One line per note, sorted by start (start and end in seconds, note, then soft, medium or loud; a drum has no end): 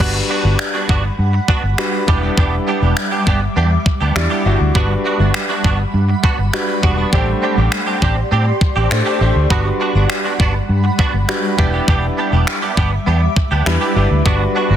0.00 0.19 G1 loud
0.00 0.99 G3 medium
0.00 7.09 G3 medium
0.00 0.16 B3 medium
0.00 0.99 D4 medium
0.00 0.17 D4 medium
0.00 0.99 F#4 medium
0.00 0.17 F#4 medium
0.00 0.99 B4 medium
0.00 2.06 F#5 medium
0.00 2.06 B5 medium
0.00 kick loud
0.00 crash medium
0.29 0.42 B3 medium
0.29 0.43 D4 medium
0.29 0.43 F#4 medium
0.44 0.54 G1 medium
0.44 0.58 B3 soft
0.44 0.58 D4 soft
0.44 0.57 F#4 medium
0.59 finger snap loud
0.74 0.88 B3 soft
0.74 0.87 D4 medium
0.74 0.87 F#4 medium
0.89 1.09 G1 medium
0.89 1.05 B3 medium
0.89 1.03 D4 medium
0.89 1.02 F#4 medium
0.89 kick medium
1.04 muted clean electric guitar stroke soft
1.19 1.38 G2 loud
1.33 muted clean electric guitar stroke medium
1.48 1.65 B3 medium
1.48 1.63 D4 medium
1.48 1.62 F#4 medium
1.48 kick medium
1.63 1.73 G1 medium
1.63 muted clean electric guitar stroke soft
1.78 2.03 G3 medium
1.78 2.03 D4 medium
1.78 2.03 F#4 medium
1.78 2.03 B4 medium
1.78 finger snap loud
1.78 muted clean electric guitar stroke soft
1.93 muted clean electric guitar stroke soft
2.08 2.27 E1 medium
2.08 3.07 G3 medium
2.08 2.22 B3 medium
2.08 3.07 D4 medium
2.08 2.22 D4 medium
2.08 3.07 E4 medium
2.08 2.21 G4 medium
2.08 3.07 B4 loud
2.08 4.72 E5 medium
2.08 4.72 D6 medium
2.08 kick medium
2.22 2.36 B3 medium
2.22 2.36 D4 medium
2.22 2.36 G4 medium
2.37 2.57 E1 loud
2.37 2.54 B3 medium
2.37 2.54 D4 medium
2.37 2.55 G4 medium
2.37 kick loud
2.67 2.80 B3 medium
2.67 2.80 D4 medium
2.67 2.81 G4 medium
2.82 2.92 E1 loud
2.82 2.96 B3 soft
2.82 2.95 D4 medium
2.82 2.95 G4 medium
2.97 finger snap loud
2.97 muted clean electric guitar stroke soft
3.11 3.25 B3 medium
3.11 3.25 D4 medium
3.11 3.25 G4 medium
3.26 3.46 G1 medium
3.26 3.43 B3 medium
3.26 3.41 D4 medium
3.26 3.40 G4 medium
3.26 kick medium
3.41 muted clean electric guitar stroke soft
3.56 3.76 E2 loud
3.56 3.73 B3 medium
3.56 3.71 D4 loud
3.56 3.70 G4 medium
3.71 muted clean electric guitar stroke medium
3.86 muted clean electric guitar stroke soft
3.86 kick medium
4.01 4.11 D2 medium
4.01 4.14 B3 medium
4.01 4.14 D4 medium
4.01 4.14 G4 medium
4.15 4.26 E2 loud
4.15 4.40 G3 medium
4.15 4.41 D4 medium
4.15 4.41 E4 medium
4.15 4.41 D5 medium
4.15 finger snap loud
4.15 muted clean electric guitar stroke soft
4.30 4.44 B3 medium
4.30 4.45 D4 medium
4.30 4.45 G4 medium
4.45 4.55 G1 medium
4.45 4.70 G3 medium
4.45 4.58 B3 medium
4.45 4.70 D4 medium
4.45 4.59 D4 medium
4.45 4.70 E4 medium
4.45 4.70 F#4 medium
4.45 4.59 G4 medium
4.60 4.70 D2 medium
4.60 muted clean electric guitar stroke soft
4.75 4.95 G1 loud
4.75 5.74 G3 medium
4.75 4.92 B3 medium
4.75 5.74 D4 medium
4.75 4.92 D4 medium
4.75 5.75 F#4 medium
4.75 4.92 F#4 medium
4.75 5.75 B4 medium
4.75 7.10 F#5 medium
4.75 7.10 B5 medium
4.75 kick loud
5.04 5.18 B3 medium
5.04 5.18 D4 medium
5.04 5.18 F#4 medium
5.19 5.29 G1 medium
5.19 5.33 B3 soft
5.19 5.33 D4 medium
5.19 5.33 F#4 medium
5.34 finger snap loud
5.49 5.63 B3 soft
5.49 5.63 D4 medium
5.49 5.62 F#4 medium
5.64 5.84 G1 medium
5.64 5.81 B3 medium
5.64 5.79 D4 medium
5.64 5.78 F#4 medium
5.64 kick medium
5.79 muted clean electric guitar stroke medium
5.94 6.13 G2 loud
6.09 muted clean electric guitar stroke soft
6.23 6.40 B3 medium
6.23 6.38 D4 medium
6.23 6.37 F#4 medium
6.23 kick medium
6.38 6.48 G1 medium
6.38 muted clean electric guitar stroke soft
6.53 6.78 G3 medium
6.53 6.78 D4 medium
6.53 6.78 F#4 medium
6.53 6.78 B4 medium
6.53 finger snap loud
6.53 muted clean electric guitar stroke soft
6.68 muted clean electric guitar stroke soft
6.83 7.03 E1 medium
6.83 7.08 G3 medium
6.83 6.98 B3 medium
6.83 7.08 D4 medium
6.83 6.97 D4 medium
6.83 7.08 F#4 medium
6.83 6.96 F#4 loud
6.83 7.08 B4 medium
6.83 kick medium
6.97 7.11 B3 medium
6.97 7.11 D4 medium
6.97 7.11 F#4 medium
7.12 7.32 A1 loud
7.12 8.12 A3 medium
7.12 7.29 C4 medium
7.12 8.12 D4 medium
7.12 7.29 D4 medium
7.12 9.48 G4 medium
7.12 8.12 G4 medium
7.12 7.30 G4 medium
7.12 8.12 C5 medium
7.12 9.48 D5 medium
7.12 9.48 C6 medium
7.12 kick loud
7.42 7.55 C4 medium
7.42 7.56 D4 medium
7.42 7.56 G4 medium
7.57 7.67 A1 loud
7.57 7.71 C4 soft
7.57 7.70 D4 soft
7.57 7.70 G4 medium
7.72 finger snap loud
7.87 8.00 C4 medium
7.87 8.00 D4 medium
7.87 8.00 G4 medium
8.01 8.22 A1 medium
8.01 8.18 C4 medium
8.01 8.16 D4 medium
8.01 8.15 G4 medium
8.01 kick medium
8.16 muted clean electric guitar stroke soft
8.31 8.51 A2 loud
8.31 8.48 C4 medium
8.31 8.46 D4 medium
8.31 8.45 G4 medium
8.46 muted clean electric guitar stroke soft
8.61 muted clean electric guitar stroke soft
8.61 kick medium
8.76 8.86 A1 medium
8.76 8.90 C4 medium
8.76 8.89 D4 medium
8.76 8.89 G4 medium
8.91 9.01 A2 loud
8.91 9.16 A3 medium
8.91 9.16 D4 medium
8.91 9.16 G4 medium
8.91 9.16 C5 medium
8.91 finger snap loud
9.05 9.19 C4 medium
9.05 9.20 D4 medium
9.05 9.20 G4 medium
9.20 9.30 A1 medium
9.20 9.45 A3 medium
9.20 9.34 C4 medium
9.20 9.46 D4 medium
9.20 9.34 D4 medium
9.20 9.46 G4 medium
9.20 9.34 G4 medium
9.20 9.46 C5 medium
9.35 9.45 D2 medium
9.35 muted clean electric guitar stroke soft
9.50 9.70 G1 loud
9.50 10.50 G3 medium
9.50 11.56 G3 medium
9.50 9.67 B3 medium
9.50 10.50 D4 medium
9.50 9.67 D4 medium
9.50 10.50 F#4 medium
9.50 9.68 F#4 loud
9.50 10.50 B4 medium
9.50 11.56 F#5 medium
9.50 11.56 B5 medium
9.50 kick loud
9.80 9.93 B3 medium
9.80 9.93 D4 medium
9.80 9.94 F#4 medium
9.95 10.05 G1 medium
9.95 10.08 B3 medium
9.95 10.08 D4 medium
9.95 10.08 F#4 medium
10.10 finger snap loud
10.10 muted clean electric guitar stroke soft
10.24 10.38 B3 soft
10.24 10.38 D4 medium
10.24 10.38 F#4 medium
10.39 10.59 G1 medium
10.39 10.56 B3 medium
10.39 10.54 D4 medium
10.39 10.53 F#4 medium
10.39 kick medium
10.54 muted clean electric guitar stroke soft
10.69 10.89 G2 loud
10.84 muted clean electric guitar stroke soft
10.99 11.15 B3 medium
10.99 11.13 D4 medium
10.99 11.12 F#4 medium
10.99 kick loud
11.14 11.23 G1 medium
11.14 muted clean electric guitar stroke soft
11.28 11.53 G3 medium
11.28 11.53 D4 medium
11.28 11.53 F#4 medium
11.28 11.54 B4 medium
11.28 finger snap loud
11.28 muted clean electric guitar stroke soft
11.43 muted clean electric guitar stroke soft
11.58 11.78 E1 medium
11.58 12.57 G3 medium
11.58 14.77 G3 medium
11.58 11.73 B3 medium
11.58 12.58 D4 medium
11.58 11.72 D4 medium
11.58 12.58 E4 medium
11.58 11.72 G4 medium
11.58 12.58 B4 loud
11.58 14.23 E5 medium
11.58 14.23 D6 medium
11.58 kick medium
11.73 11.87 B3 medium
11.73 11.86 D4 medium
11.73 11.86 G4 medium
11.88 12.08 E1 loud
11.88 12.04 B3 medium
11.88 12.05 D4 medium
11.88 12.05 G4 medium
11.88 kick loud
12.17 12.31 B3 medium
12.17 12.31 D4 medium
12.17 12.31 G4 medium
12.32 12.42 E1 medium
12.32 12.46 B3 medium
12.32 12.46 D4 medium
12.32 12.45 G4 medium
12.47 finger snap loud
12.62 12.76 B3 soft
12.62 12.75 D4 medium
12.62 12.75 G4 medium
12.77 12.97 G1 medium
12.77 12.94 B3 medium
12.77 12.91 D4 medium
12.77 12.90 G4 medium
12.77 kick medium
12.92 muted clean electric guitar stroke soft
13.06 13.26 E2 loud
13.06 13.23 B3 medium
13.06 13.21 D4 medium
13.06 13.20 G4 medium
13.21 muted clean electric guitar stroke medium
13.36 muted clean electric guitar stroke soft
13.36 kick medium
13.51 13.61 D2 medium
13.51 13.65 B3 medium
13.51 13.65 D4 medium
13.51 13.64 G4 medium
13.66 13.76 E2 loud
13.66 13.91 G3 medium
13.66 13.91 D4 medium
13.66 13.91 E4 medium
13.66 13.91 B4 medium
13.66 finger snap loud
13.81 13.94 B3 medium
13.81 13.95 D4 medium
13.81 13.96 G4 medium
13.96 14.06 G1 medium
13.96 14.21 G3 medium
13.96 14.09 B3 medium
13.96 14.21 D4 medium
13.96 14.09 D4 medium
13.96 14.21 E4 medium
13.96 14.09 G4 medium
13.96 14.21 B4 medium
14.11 14.21 D2 medium
14.11 muted clean electric guitar stroke soft
14.25 14.45 G1 loud
14.25 14.77 G3 medium
14.25 14.42 B3 medium
14.25 14.77 D4 medium
14.25 14.42 D4 medium
14.25 14.77 F#4 medium
14.25 14.43 F#4 medium
14.25 14.77 B4 medium
14.25 14.77 F#5 medium
14.25 14.77 B5 medium
14.25 kick loud
14.55 14.68 B3 medium
14.55 14.69 D4 medium
14.55 14.69 F#4 medium
14.70 14.77 G1 loud
14.70 14.77 B3 medium
14.70 14.77 D4 medium
14.70 14.77 F#4 medium